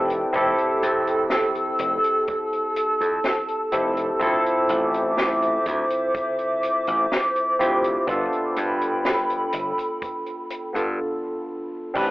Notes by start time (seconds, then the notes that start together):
Already playing: F1 C4 E4 G4 A4 G5 E6
0.10 closed hi-hat
0.32 F1 C4 E4 G4 A4, kick, closed hi-hat
0.58 closed hi-hat
0.82 F2, closed hi-hat
1.07 closed hi-hat
1.30 snare, closed hi-hat
1.55 closed hi-hat
1.79 F1 A5, closed hi-hat
2.04 closed hi-hat
2.27 kick, closed hi-hat
2.53 closed hi-hat
2.76 closed hi-hat
3.01 F2, closed hi-hat
3.24 snare, closed hi-hat
3.48 closed hi-hat
3.72 F1 C4 E4 G4 A4, closed hi-hat
3.97 closed hi-hat
4.19 D2 C4 E4 F4 A4 C5 E5 D6, kick, closed hi-hat
4.46 closed hi-hat
4.69 A1, closed hi-hat
4.94 closed hi-hat
5.18 snare, closed hi-hat
5.42 closed hi-hat
5.66 D2, kick, closed hi-hat
5.90 closed hi-hat
6.14 kick, closed hi-hat
6.39 closed hi-hat
6.63 closed hi-hat
6.87 A1, closed hi-hat
7.12 snare, closed hi-hat
7.36 closed hi-hat
7.59 D2 C4 E4 F4 G4, closed hi-hat
7.84 closed hi-hat
8.07 G1 B3 D4 F4 A4 G5 B5, kick, closed hi-hat
8.33 closed hi-hat
8.56 G2, closed hi-hat
8.81 closed hi-hat
9.05 snare, closed hi-hat
9.30 closed hi-hat
9.52 G1, closed hi-hat
9.78 kick, closed hi-hat
10.02 kick, closed hi-hat
10.26 closed hi-hat
10.50 closed hi-hat
10.73 G2 B3 D4 F4 A4, closed hi-hat
11.94 A1 C4 D4 G4 B4, kick, closed hi-hat, crash